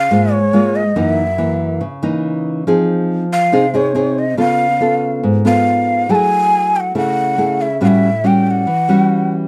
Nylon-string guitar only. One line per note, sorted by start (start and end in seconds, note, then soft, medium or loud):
0.11 0.94 G#2 medium
0.11 0.38 G#3 medium
0.11 0.38 A#3 medium
0.11 0.38 F4 medium
0.53 0.82 G#3 medium
0.53 0.82 A#3 medium
0.53 0.82 F4 medium
0.96 1.79 F#2 medium
0.96 1.23 E3 medium
0.96 1.24 A#3 medium
0.96 1.24 D#4 medium
1.38 1.81 E3 medium
1.38 1.81 A#3 soft
1.81 2.65 C#3 medium
2.03 2.64 E3 medium
2.03 2.64 A#3 medium
2.03 2.64 D#4 medium
2.67 3.51 F3 medium
2.67 3.25 C4 medium
2.67 3.25 D#4 medium
2.67 3.25 G#4 medium
3.52 4.36 C3 medium
3.52 3.65 C4 medium
3.52 3.65 D#4 medium
3.52 3.66 G#4 medium
3.74 3.92 C4 medium
3.74 3.92 D#4 medium
3.74 3.92 G#4 medium
3.95 4.24 C4 medium
3.95 4.24 D#4 medium
3.95 4.24 G#4 medium
4.37 5.21 C#3 medium
4.37 4.66 B3 medium
4.37 4.66 F4 medium
4.37 4.66 A4 medium
4.80 5.42 B3 soft
4.80 5.42 F4 soft
4.80 5.42 A4 medium
5.23 6.07 G#2 medium
5.45 6.06 B3 medium
5.45 6.06 F4 medium
5.45 6.06 A4 medium
6.09 6.93 F#3 medium
6.09 6.92 A3 medium
6.09 6.92 E4 medium
6.09 6.92 G#4 medium
6.95 7.79 C#3 medium
6.95 7.35 A3 medium
6.95 7.35 E4 medium
6.95 7.35 G#4 medium
7.38 7.67 A3 medium
7.38 7.67 E4 soft
7.38 7.67 G#4 medium
7.81 8.64 A2 medium
7.81 8.09 G3 medium
7.81 8.09 C#4 medium
7.81 8.09 F#4 medium
8.24 8.66 G3 medium
8.24 8.67 C#4 soft
8.24 8.67 F#4 medium
8.67 9.48 E3 medium
8.89 9.48 G3 medium
8.89 9.48 C#4 medium
8.89 9.48 F#4 medium